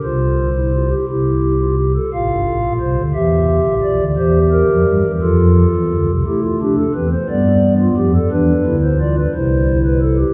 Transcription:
<<
  \new Staff \with { instrumentName = "Pipe organ" } { \time 6/8 \key f \major \tempo 4. = 58 << { c''4. g'4. | f''4 c''8 e''4 d''8 | c''8 bes'4 a'4. | \key a \minor g'16 f'16 g'16 a'16 b'16 c''16 d''8. f'16 g'16 a'16 |
b'8. c''16 d''16 b'16 c''8. b'16 a'16 g'16 | } \\ { f'8. e'16 f'16 g'16 e'8. f'16 g'16 a'16 | f'4. g'4. | g'4. f'4. | e'8 d'8 c'8 b4. |
d'8 e'8 f'8 e'4. | } >> }
  \new Staff \with { instrumentName = "Pipe organ" } { \clef bass \time 6/8 \key f \major <c, c>4. <c, c>4. | <a,, a,>16 <g,, g,>16 <a,, a,>16 <bes,, bes,>16 <c, c>16 <d, d>16 <e, e>8. <a,, a,>16 <bes,, bes,>16 <d, d>16 | <e, e>8. <f, f>16 <g, g>16 <e, e>16 <f, f>8. <e, e>16 <d, d>16 <c, c>16 | \key a \minor a4 <e, e>8 <g, g>4 <f, f>8 |
<e, e>8 <d, d>4 <c, c>4. | }
>>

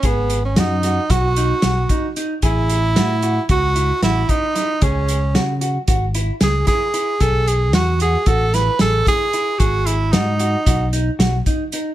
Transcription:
<<
  \new Staff \with { instrumentName = "Clean electric guitar" } { \time 9/8 \key b \mixolydian \tempo 4. = 75 gis'4 fis'8 fis'8 fis'8 dis'8 fis'8 dis'8 dis'8 | gis'4 fis'8 fis'8 fis'8 e'8 fis'8 e'8 e'8 | gis'4 fis'8 fis'8 fis'8 e'8 gis'8 e'8 e'8 | gis'4 fis'8 fis'8 fis'8 e'8 gis'8 e'8 e'8 |
gis'4 fis'8 fis'8 fis'8 dis'8 fis'8 dis'8 dis'8 | }
  \new Staff \with { instrumentName = "Tenor saxophone" } { \time 9/8 \key b \mixolydian b8. cis'16 dis'4 fis'2 r8 | e'2 fis'4 e'8 dis'4 | cis'4 r2 gis'8 gis'4 | a'8 gis'8 fis'8 gis'8 a'8 b'8 a'8 gis'4 |
fis'8 e'8 dis'4. r2 | }
  \new Staff \with { instrumentName = "Fingered electric bass" } { \clef bass \time 9/8 \key b \mixolydian gis,,4 fis,4 b,,4 b,,8 r4 | a,,4 a,4 cis,4 a,,8 r4 | cis,4 cis4 gis,,4 cis,8 r4 | b,,4 e,4 a,,4 a,,8 r4 |
gis,,4 gis,4 b,,4 b,,8 r4 | }
  \new DrumStaff \with { instrumentName = "Drums" } \drummode { \time 9/8 <hh bd>8 hh8 <hh sn>8 <hh sn>8 <hh bd sn>8 hh8 <hh sn>8 <hh bd>8 hh8 | <hh bd>8 hh8 <hh sn>8 hh8 <hh bd>8 hh8 <hh sn>8 <hh bd>8 <hh sn>8 | <hh bd>8 hh8 <hh sn>8 hh8 <hh bd>8 hh8 <hh sn>8 <hh bd sn>8 hh8 | <hh bd>8 hh8 <hh sn>8 hh8 <hh bd>8 <hh sn>8 <hh sn>8 <hh bd sn>8 hh8 |
<hh bd>8 hh8 <hh sn>8 hh8 <hh bd>8 hh8 <hh sn>8 <hh bd>8 hh8 | }
>>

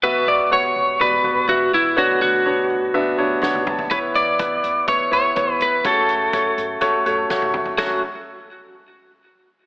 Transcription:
<<
  \new Staff \with { instrumentName = "Lead electric guitar" } { \time 4/4 \key fis \minor \tempo 4 = 124 b'8 d''8 cis''4 b'4 fis'8 e'8 | fis'8 fis'2. r8 | b'8 d''4. cis''8 cis''4 b'8 | a'2. r4 |
fis'8 r2. r8 | }
  \new Staff \with { instrumentName = "Grand piano" } { \time 4/4 \key fis \minor <b fis' e''>4 <b fis' fis''>4 <b fis' d''>8 <b fis' b'>8 <b fis' e''>4 | <b d' cis''>4 <b d' cis''>4 <b d' e''>8 <b d' cis''>8 <b d' cis''>4 | <b e' cis''>4 <b e' b'>4 <b e' cis''>8 <b e' cis''>8 <b e' cis''>4 | <a fis' cis''>4 <a fis' cis''>4 <a fis' cis''>8 <a fis' cis''>8 <a fis' cis''>4 |
<a fis' cis''>8 r2. r8 | }
  \new Staff \with { instrumentName = "Grand piano" } { \clef bass \time 4/4 \key fis \minor b,4. r2 r8 | d4. r4. fis''8 a''8 | e4. r2 r8 | cis4. r2 r8 |
fis,8 r2. r8 | }
  \new Staff \with { instrumentName = "Upright bass" } { \clef bass \time 4/4 \key fis \minor e,,8 e,,8 e,,8 e,,8 e,,8 e,,8 e,,8 e,,8 | d,8 d,8 d,8 d,8 d,8 d,8 d,8 d,8 | e,8 e,8 e,8 e,8 e,8 e,8 e,8 e,8 | fis,8 fis,8 fis,8 fis,8 fis,8 fis,8 fis,8 fis,8 |
fis,,8 r2. r8 | }
  \new DrumStaff \with { instrumentName = "Drums" } \drummode { \time 4/4 r4 r4 r4 r4 | r4 r4 r4 sn16 tommh16 toml16 tomfh16 | <hh bd>8 hh8 <hh bd>8 hh8 <hh bd>8 hh8 <hh bd>8 hh8 | <hh bd>8 hh8 <hh bd>8 hh8 <hh bd>8 hh8 <bd sn>16 tommh16 toml16 tomfh16 |
<cymc bd sn>4 r4 r4 r4 | }
>>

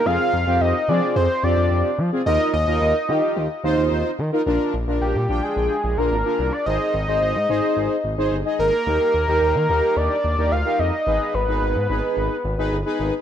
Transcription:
<<
  \new Staff \with { instrumentName = "Analog synth lead" } { \time 4/4 \key ees \major \tempo 4 = 109 f''4 ees''8 d''8 c''8 d''4 r8 | ees''8 ees''4. r2 | r4 g'8. aes'4 bes'4 d''16 | ees''2. r8 bes'8~ |
bes'2 d''4 f''8 ees''8~ | ees''8 ces''2. r8 | }
  \new Staff \with { instrumentName = "Analog polysynth" } { \time 4/4 \key ees \major <c' f' aes'>8 r16 <c' f' g'>8 r16 <c' f' aes'>8. r16 <c' f' g'>8. r8 <c' f' aes'>16 | <ees' f' bes'>8 r16 <ees' f' bes'>8 r16 <ees' f' g'>8. r16 <ees' f' c''>8. r8 <ees' f' bes'>16 | <d' f' bes'>8 r16 <d' f' bes'>8 r16 <d' f' g''>8. r8 <d' f' bes'>16 r16 <d' f' bes'>8 r16 | <ees' aes' c''>8 r16 <ees' aes' c''>8 r16 <ees' aes' c''>8. r8 <ees' aes' c''>16 r16 <ees' aes' ees''>8 r16 |
<ees' g' bes'>8 r16 <ees' g' bes'>8 r16 <ees' g' bes'>8. r8 <ees' g' bes'>16 r16 <ees' g' bes'>8 r16 | <ees' aes' ces''>8 r16 <ees' aes' ces''>8 r16 <ees' aes' ces''>8. r8 <ees' aes' ces''>16 r16 <ees' aes' ces''>8 r16 | }
  \new Staff \with { instrumentName = "Analog synth bass" } { \clef bass \time 4/4 \key ees \major f,16 r16 f,16 f,16 f,16 r16 f16 r16 f,16 r16 f,16 f,16 f,16 r16 f16 r16 | ees,16 r16 ees,16 ees,16 ees,16 r16 ees16 r16 ees,16 r16 ees,16 ees,16 ees,16 r16 ees16 r16 | bes,,16 r16 bes,,16 bes,,16 bes,,16 bes,16 bes,,16 r16 bes,,16 r16 bes,,16 bes,,16 aes,,16 r16 c,16 r16 | aes,,16 r16 aes,,16 aes,,16 aes,,16 aes,16 aes,,16 r16 aes,,16 r16 aes,,16 aes,,16 g,,16 r16 aes,,16 r16 |
ees,16 r16 ees,16 ees,16 ees,16 ees16 ees,16 r16 ees,16 r16 ees,16 ees,16 d,16 r16 f,16 r16 | aes,,16 r16 aes,,16 aes,,16 aes,,16 aes,16 aes,,16 r16 aes,,16 r16 aes,,16 aes,,16 g,,16 r16 aes,,16 r16 | }
>>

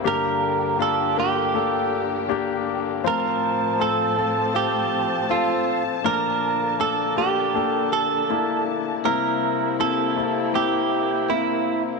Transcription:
<<
  \new Staff \with { instrumentName = "Clean electric guitar" } { \time 4/4 \key f \major \tempo 4 = 80 bes'4 a'8 g'2 r8 | bes'4 a'4 g'4 f'8. r16 | bes'4 a'8 g'4 a'4 r8 | bes'4 a'4 g'4 e'8. r16 | }
  \new Staff \with { instrumentName = "Grand piano" } { \time 4/4 \key f \major <bes d' g'>4 <bes d' f'>8 <bes d' bes'>8 <bes d' a'>4 <bes d' g'>4 | <c' f' c''>4 <c' f' a'>8 <c' f' a'>8 <c' f' a'>4 <c' f' a'>4 | <bes d' bes'>4 <bes d' a'>8 <bes d' g'>8 <bes d' a'>4 <bes d' e'>4 | <bes c' e'>4 <bes c' e'>8 <bes c' e'>8 <bes c' e'>4 <bes c' e'>4 | }
  \new Staff \with { instrumentName = "Grand piano" } { \clef bass \time 4/4 \key f \major <g, d>1 | <a, f>1 | <bes, f>1 | <c g>1 | }
  \new Staff \with { instrumentName = "String section" } { \time 4/4 \key f \major << { g'1 | a''1~ | a''1 | e'1 | } \\ { <d bes>1 | <a, f c'>1 | <d bes>1 | <c bes>1 | } >> }
>>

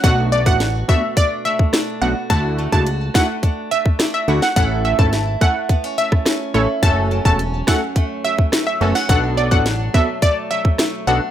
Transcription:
<<
  \new Staff \with { instrumentName = "Synth pluck" } { \time 4/4 \key b \dorian \tempo 4 = 106 fis''16 r16 d''16 fis''8 r16 e''8 d''16 r16 e''16 r8. fis''16 r16 | a''16 r8 a''16 r8 fis''16 r8. e''16 r8 e''16 r16 fis''16 | fis''16 r16 e''16 a''8 r16 fis''8 r8 e''16 r8. cis''16 r16 | a''16 r8 a''16 r8 fis''16 r8. e''16 r8 e''16 r16 fis''16 |
fis''16 r16 d''16 fis''8 r16 e''8 d''16 r16 e''16 r8. fis''16 r16 | }
  \new Staff \with { instrumentName = "Synth stab" } { \time 4/4 \key b \dorian <a b d' fis'>8. <a b d' fis'>16 r8 <a b d' fis'>16 r4. r16 <a b d' fis'>16 r16 | <a d' e' fis'>8. <a d' e' fis'>16 r8 <a d' e' fis'>16 r4. r16 <a d' e' fis'>16 r16 | <a cis' e' a'>8. <a cis' e' a'>16 r8 <a cis' e' a'>16 r4. r16 <a cis' e' a'>16 r16 | <a cis' fis' a'>8. <a cis' fis' a'>16 r8 <a cis' fis' a'>16 r4. r16 <a cis' fis' a'>16 r16 |
<b d' fis' a'>8. <b d' fis' a'>16 r8 <b d' fis' a'>16 r4. r16 <b d' fis' a'>16 r16 | }
  \new Staff \with { instrumentName = "Steel-string acoustic guitar" } { \time 4/4 \key b \dorian <b, fis'>8 a8 fis'8 a8 d'8 a8 d'8 fis'8 | fis'8 a8 fis'8 a8 d'8 a8 d'8 fis'8 | e'8 a8 e'8 a8 b16 cis'16 a8 cis'8 e'8 | <fis, cis'>8 fis8 cis'8 fis8 a8 fis8 a8 b16 cis'16 |
<b, d'>8 fis8 d'8 fis8 a8 fis8 a8 d'8 | }
  \new Staff \with { instrumentName = "Analog synth bass" } { \clef bass \time 4/4 \key b \dorian b,,8. a,,8. r2 b,,16 r16 | d,8. cis,8. r2 d,16 r16 | a,,8. gis,,8. r2 a,,16 r16 | fis,,8. e,,8. r2 fis,,16 r16 |
b,,8. a,,8. r2 b,,16 r16 | }
  \new DrumStaff \with { instrumentName = "Drums" } \drummode { \time 4/4 <hh bd>8. bd16 <hh sn>8 bd8 <hh bd>8. bd16 <hh ss sn>4 | <hh bd>8. bd16 hh8 <bd ss sn>8 <hh bd>8. bd16 <hh ss sn>8. sn16 | <hh bd>8. bd16 <hh sn>8 bd8 <hh bd>8. <bd ss>16 <hh ss sn>4 | <hh bd>8. bd16 hh8 <bd ss sn>8 <hh bd>8. bd16 <hh ss sn>8. sn16 |
<hh bd>8. bd16 <hh sn>8 bd8 <hh bd>8. bd16 <hh ss sn>4 | }
>>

